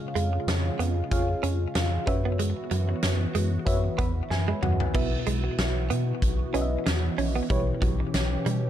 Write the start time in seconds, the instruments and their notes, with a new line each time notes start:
Already playing: analog synth pad C#3 G#3 F4, fm electric piano F4 G#4 C#5 F5
0.15 analog synth bass F2, clean electric guitar G#3, closed hi-hat
0.33 muted clean electric guitar stroke
0.47 analog synth bass F2, snare, closed hi-hat
0.79 analog synth bass F2, clean electric guitar B3, closed hi-hat
1.11 analog synth bass F2, fm electric piano F4 G#4 C#5 F5, kick, closed hi-hat
1.43 analog synth bass F2, clean electric guitar C#4, closed hi-hat
1.75 analog synth bass F2, muted clean electric guitar stroke, snare, closed hi-hat
2.06 analog synth bass F#2, analog synth pad E3 B3 F#4, clean electric guitar C#4, fm electric piano F#4 B4 C#5 E5, kick, closed hi-hat
2.25 clean electric guitar B3
2.39 clean electric guitar G#3, closed hi-hat
2.71 analog synth bass F#2, clean electric guitar F#3, closed hi-hat
2.89 muted clean electric guitar stroke
3.02 analog synth bass F#2, snare, closed hi-hat
3.35 analog synth bass F#2, clean electric guitar G#3, closed hi-hat
3.65 analog synth bass F#2, fm electric piano F#4 B4 C#5 E5, kick, closed hi-hat
3.98 analog synth bass E2, clean electric guitar B3, fm electric piano B5, kick, closed hi-hat
4.30 analog synth bass F#2, fm electric piano G#5, muted clean electric guitar stroke, snare
4.48 clean electric guitar G#3
4.62 analog synth bass F#2, clean electric guitar F#3, fm electric piano F#5, mid tom
4.80 floor tom
4.94 analog synth bass B1, fm electric piano B2 E4 F#4 B4 E5, analog synth pad E3 B3 F#4, clean electric guitar B3, kick, crash
5.26 analog synth bass B1, clean electric guitar G#3, closed hi-hat
5.44 muted clean electric guitar stroke
5.58 analog synth bass B1, snare, closed hi-hat
5.90 analog synth bass B2, clean electric guitar B3, closed hi-hat
6.22 analog synth bass B1, kick, closed hi-hat
6.53 analog synth bass B1, clean electric guitar C#4, fm electric piano E4 F#4 B4 D#5, closed hi-hat
6.61 fm electric piano E5
6.86 analog synth bass E2, muted clean electric guitar stroke, snare, closed hi-hat
7.18 analog synth bass A#1, clean electric guitar C#4, open hi-hat
7.36 clean electric guitar B3
7.50 analog synth bass B1, fm electric piano B2 E4 G4 B4 C#5, clean electric guitar G3, analog synth pad C#4 G4, kick, closed hi-hat
7.82 analog synth bass B1, clean electric guitar F#3, kick, closed hi-hat
8.00 muted clean electric guitar stroke
8.14 analog synth bass B1, snare, closed hi-hat
8.46 analog synth bass B2, clean electric guitar G3, closed hi-hat